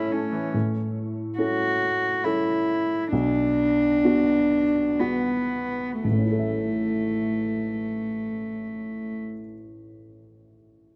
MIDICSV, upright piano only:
0, 0, Header, 1, 2, 480
1, 0, Start_track
1, 0, Key_signature, 3, "major"
1, 0, Tempo, 845070
1, 307, Time_signature, 3, 2, 24, 8
1, 1270, Tempo, 895522
1, 2230, Tempo, 966184
1, 2710, Tempo, 1047120
1, 5445, End_track
2, 0, Start_track
2, 0, Title_t, "Upright piano"
2, 0, Program_c, 0, 0
2, 0, Control_c, 0, 64, 127
2, 0, Note_on_c, 0, 45, 42
2, 0, Note_on_c, 0, 61, 29
2, 0, Note_on_c, 0, 64, 26
2, 0, Note_on_c, 0, 69, 30
2, 0, Note_on_c, 0, 73, 31
2, 286, Note_off_c, 0, 61, 0
2, 287, Note_off_c, 0, 64, 0
2, 287, Note_off_c, 0, 69, 0
2, 307, Note_off_c, 0, 45, 0
2, 307, Note_on_c, 0, 45, 36
2, 318, Control_c, 0, 64, 0
2, 319, Note_off_c, 0, 73, 0
2, 407, Control_c, 0, 64, 127
2, 769, Note_off_c, 0, 45, 0
2, 785, Note_on_c, 0, 61, 32
2, 788, Note_on_c, 0, 64, 33
2, 790, Note_on_c, 0, 69, 34
2, 1249, Note_off_c, 0, 61, 0
2, 1250, Note_off_c, 0, 64, 0
2, 1251, Note_off_c, 0, 69, 0
2, 1273, Note_on_c, 0, 61, 33
2, 1276, Note_on_c, 0, 64, 31
2, 1279, Note_on_c, 0, 69, 37
2, 1721, Note_off_c, 0, 61, 0
2, 1723, Note_off_c, 0, 64, 0
2, 1724, Note_off_c, 0, 69, 0
2, 1746, Note_on_c, 0, 35, 46
2, 1753, Control_c, 0, 64, 0
2, 1836, Control_c, 0, 64, 127
2, 2217, Note_off_c, 0, 35, 0
2, 2236, Note_on_c, 0, 59, 35
2, 2240, Note_on_c, 0, 66, 41
2, 2693, Note_off_c, 0, 59, 0
2, 2695, Note_off_c, 0, 66, 0
2, 2710, Note_on_c, 0, 59, 30
2, 2713, Note_on_c, 0, 66, 37
2, 3169, Note_off_c, 0, 59, 0
2, 3171, Note_off_c, 0, 66, 0
2, 3190, Note_on_c, 0, 33, 29
2, 3197, Control_c, 0, 64, 0
2, 3221, Note_on_c, 0, 45, 28
2, 3255, Note_on_c, 0, 61, 26
2, 3284, Note_on_c, 0, 64, 29
2, 3285, Control_c, 0, 64, 127
2, 3317, Note_on_c, 0, 69, 28
2, 3349, Note_on_c, 0, 76, 27
2, 4628, Note_off_c, 0, 33, 0
2, 4659, Note_off_c, 0, 45, 0
2, 4694, Note_off_c, 0, 61, 0
2, 4723, Note_off_c, 0, 64, 0
2, 4755, Note_off_c, 0, 69, 0
2, 4788, Note_off_c, 0, 76, 0
2, 5445, End_track
0, 0, End_of_file